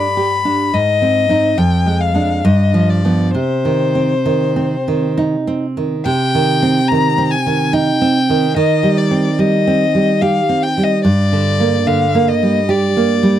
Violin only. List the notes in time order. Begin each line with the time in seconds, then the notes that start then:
Already playing: B5
0.74 D#5
1.58 G5
2.01 F5
2.45 D#5
2.89 D5
3.34 C5
6.05 G5
6.88 A#5
7.31 G#5
7.72 G5
8.57 D#5
8.97 D5
9.39 D#5
10.21 F5
10.63 G5
10.83 D#5
11.04 D5
11.87 F5
12.28 D#5
12.70 D5